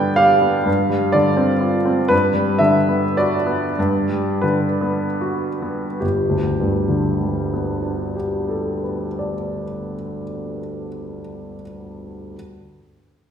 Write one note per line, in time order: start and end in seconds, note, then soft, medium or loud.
0.00 0.64 G2 soft
0.00 0.69 D3 soft
0.00 0.70 G3 soft
0.00 0.34 B3 soft
0.00 0.69 D5 medium
0.00 0.19 G5 medium
0.16 0.56 G4 soft
0.16 1.13 F5 medium
0.41 0.66 B3 soft
0.66 2.07 G2 soft
0.90 1.28 G3 soft
1.12 1.53 D3 soft
1.12 2.10 D5 medium
1.37 1.76 C4 soft
1.60 2.00 F4 soft
1.85 2.11 C4 soft
2.08 3.71 G2 soft
2.08 2.61 B4 medium
2.34 2.77 G3 soft
2.59 3.04 D3 soft
2.59 3.15 E5 medium
2.89 3.34 B3 soft
3.17 3.65 F#4 soft
3.17 4.44 D5 medium
3.46 3.76 B3 soft
3.79 5.99 G2 soft
4.09 4.66 G3 soft
4.41 5.06 D3 soft
4.41 6.00 B4 soft
4.81 5.48 B3 soft
5.21 5.86 F#4 soft
5.62 6.01 B3 soft
6.00 9.06 G1 soft
6.00 8.14 G4 soft
6.29 9.33 D2 soft
6.60 9.64 G2 soft
6.89 9.93 D3 soft
7.20 10.24 G3 soft
7.54 10.58 B3 soft
7.82 10.86 D4 soft
8.16 11.20 G4 soft
8.49 11.53 A4 soft
8.83 11.62 B4 soft
9.19 11.61 D5 soft